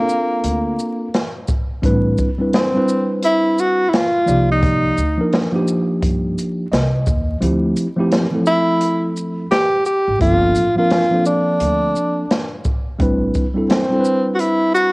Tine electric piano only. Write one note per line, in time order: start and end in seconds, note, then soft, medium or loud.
0.00 1.07 A#3 medium
0.00 1.07 C4 medium
0.00 1.08 D4 medium
0.00 1.08 F4 medium
0.00 1.09 A4 medium
1.82 2.28 G3 medium
1.82 2.28 C4 medium
1.82 2.28 D4 medium
1.82 2.29 E4 medium
1.82 2.29 B4 medium
2.38 2.66 G3 medium
2.38 2.66 C4 medium
2.38 2.67 D4 medium
2.38 2.67 E4 medium
2.38 2.68 B4 medium
2.74 3.86 G3 medium
2.74 3.86 C4 medium
2.74 3.87 D4 medium
2.74 3.87 E4 medium
2.74 3.88 B4 medium
4.26 4.99 F3 medium
4.26 4.99 A#3 medium
4.26 5.00 D#4 medium
4.26 5.00 G4 medium
4.26 4.99 D5 medium
5.18 5.45 F3 medium
5.18 5.46 A#3 medium
5.18 5.46 D4 medium
5.18 5.47 D#4 medium
5.18 5.47 A#4 medium
5.52 6.65 F3 medium
5.52 6.65 A#3 medium
5.52 6.66 D4 medium
5.52 6.66 D#4 medium
5.52 6.67 G4 medium
6.72 7.38 D#5 medium
7.40 7.86 F3 medium
7.40 7.86 A3 medium
7.40 7.86 C4 medium
7.40 7.87 E4 medium
7.40 7.87 G4 medium
7.96 8.24 F3 medium
7.96 8.25 A3 medium
7.96 8.25 C4 medium
7.96 8.26 E4 medium
8.00 8.26 G4 medium
8.31 8.37 E3 medium
8.31 9.44 A3 medium
8.31 9.45 C4 medium
8.31 9.45 E4 medium
8.31 9.46 A4 medium
8.38 9.47 F3 medium
10.19 10.64 F3 medium
10.19 10.65 A#3 medium
10.19 10.65 C4 medium
10.19 10.66 D4 medium
10.23 10.67 A4 medium
10.76 11.03 F3 medium
10.76 11.04 A#3 medium
10.76 11.05 C4 medium
10.76 11.05 D4 medium
10.76 11.05 A#4 medium
11.11 12.23 F3 medium
11.11 12.24 A#3 medium
11.11 12.24 C4 medium
11.11 12.25 D4 medium
11.11 12.25 A4 medium
12.99 13.44 G3 medium
12.99 13.44 C4 medium
12.99 13.45 D4 medium
12.99 13.45 E4 medium
12.99 13.46 B4 medium
13.54 13.82 G3 medium
13.54 13.83 C4 medium
13.54 13.83 D4 medium
13.54 13.84 E4 medium
13.54 13.84 A4 medium
13.90 14.92 G3 medium
13.90 14.92 C4 medium
13.90 14.92 D4 medium
13.90 14.92 E4 medium
13.90 13.97 A4 medium
14.00 14.92 B4 medium